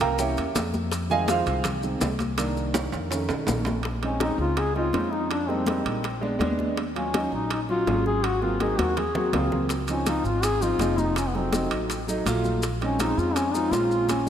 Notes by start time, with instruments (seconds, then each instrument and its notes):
Already playing: grand piano F3 A#3 C#4
0.00 upright bass C2, grand piano A#4 F5 G5 A#5, high bongo, high conga, high timbale, maracas
0.18 grand piano E3 A#3 C#4 G4 C#5 E5 G5, high bongo, high conga, maracas
0.37 upright bass E2, high conga, high timbale, maracas
0.55 upright bass F2, high bongo, low bongo, high conga, high timbale, low timbale, maracas
0.73 high bongo, high conga, maracas
0.92 high bongo, high conga, high timbale, maracas
1.10 grand piano D#3 G#3 C4 G#4 D#5 F5 G#5, high bongo, high conga, maracas
1.28 grand piano F4 G#4 C5 F5, high bongo, high conga, high timbale, low timbale, maracas
1.46 upright bass C2, high bongo, high timbale, maracas
1.64 high bongo, high conga, low conga, high timbale, maracas
1.83 grand piano D#3 G#3 C4, high conga, maracas
2.00 upright bass C2, high bongo, low bongo, high conga, high timbale, low timbale, maracas
2.19 high bongo, high conga, high timbale, maracas
2.38 grand piano D#3 A#3 D4, high bongo, high conga, high timbale, maracas
2.57 high bongo, high conga, maracas
2.74 high bongo, high conga, high timbale, maracas
2.92 upright bass F2, high bongo, high conga, high timbale, maracas
3.11 grand piano D#3 A3 C#4, high bongo, high conga, high timbale, maracas
3.29 upright bass B1, high conga, low timbale, maracas
3.47 upright bass A#1, high bongo, low bongo, high conga, low timbale, maracas
3.65 high bongo, high conga, low timbale, maracas
3.83 high bongo, high conga, high timbale
4.02 grand piano G#3 C4 C#4 D#4, duduk C#4, high bongo, high conga, high timbale
4.20 grand piano G#3 C4 C#4 D#4, duduk D#4, high bongo, high conga, high timbale
4.38 upright bass C#2, duduk F4, high conga
4.57 duduk G#4, high bongo, high conga, high timbale
4.75 grand piano G#3 C4 C#4 D#4, duduk F4, high bongo, high conga
4.93 upright bass F2, grand piano G#3 C4 C#4 D#4, high bongo, low bongo, high conga, high timbale
5.12 duduk D#4, high bongo
5.30 duduk D4, high bongo, high conga, high timbale
5.48 grand piano G3 G#3 A#3 D#4, duduk C4, high bongo, high conga
5.66 grand piano G3 G#3 A#3 D#4, high bongo, high conga, high timbale
5.86 upright bass A#1, high conga, high timbale
6.03 high bongo, high conga, high timbale
6.21 grand piano G#3 B3 D4, high bongo, high conga
6.39 upright bass D#2, grand piano G#3 B3 D4, high bongo, low bongo, high conga, high timbale
6.59 high bongo, high conga
6.77 high bongo, high conga, high timbale
6.95 grand piano F#3 C#4 F4, duduk C#4, high bongo, high conga, high timbale
7.13 grand piano F#3 C#4 D#4, high bongo, high conga, high timbale
7.32 upright bass A#1, duduk D#4, high conga
7.50 duduk D#4, high bongo, high conga, high timbale
7.68 grand piano F#3 C#4 F#4, duduk F4, high bongo, high conga
7.87 upright bass G#1, grand piano F#3 C#4 G#4, high bongo, low bongo, high conga, high timbale, low timbale
8.06 duduk G#4, high bongo
8.24 duduk F#4, high bongo, high conga, high timbale
8.42 grand piano F#3 A#3 C4 F4, duduk F4, high bongo, high conga
8.60 grand piano F#3 A#3 C4 D#4, duduk G#4, high bongo, high conga, high timbale
8.78 upright bass D#2, duduk F#4, high conga, high timbale
8.97 duduk G#4, high bongo, low conga, high timbale
9.15 grand piano F#3 A#3 C4 F#4, high bongo, low conga
9.33 upright bass C#2, grand piano F#3 A#3 C4 F4, high bongo, low bongo, low conga, high timbale, low timbale
9.52 high bongo, low conga
9.69 high bongo, high conga, high timbale, maracas
9.88 grand piano F3 C4 D#4, duduk C#4, high bongo, high conga, high timbale, maracas
10.06 grand piano F3 C4 F4, duduk D#4, high bongo, high conga, high timbale, maracas
10.24 upright bass G#1, duduk F4, high conga, maracas
10.43 duduk G#4, high bongo, high conga, high timbale, maracas
10.61 grand piano F3 C4 D#4, duduk F4, high bongo, high conga, maracas
10.79 upright bass F1, grand piano F3 C4 D#4, high bongo, low bongo, high conga, high timbale, maracas
10.98 duduk D#4, high bongo, high conga, maracas
11.16 duduk C#4, high bongo, high conga, high timbale, maracas
11.29 duduk B3
11.34 grand piano F#3 A3 D#4, duduk C4, high bongo, high conga
11.53 grand piano F#3 A3 D#4, high bongo, high conga, high timbale, maracas
11.71 upright bass A1, high conga, high timbale, maracas
11.90 high bongo, high conga, high timbale, maracas
12.07 grand piano F#3 A3 D#4, high bongo, high conga, maracas
12.25 upright bass A#1, grand piano F#3 A3 F4, high bongo, low bongo, high conga, high timbale, maracas
12.44 high bongo, high conga, maracas
12.62 high bongo, high conga, high timbale, maracas
12.81 grand piano G#3 C4 C#4 D#4, duduk C#4, high bongo, high conga, high timbale
12.99 grand piano G#3 C4 C#4 F4, duduk D#4, high bongo, high conga, high timbale, maracas
13.17 upright bass F2, duduk F4, high conga, maracas
13.36 duduk C#4, high bongo, high conga, high timbale, maracas
13.54 grand piano G#3 C4 C#4 F4, duduk D#4, high bongo, high conga, maracas
13.71 upright bass A#1, grand piano G#3 C4 C#4 F4, duduk F4, high bongo, low bongo, high conga, high timbale, maracas
13.91 high bongo, maracas
14.09 duduk C#4, high bongo, high conga, high timbale, maracas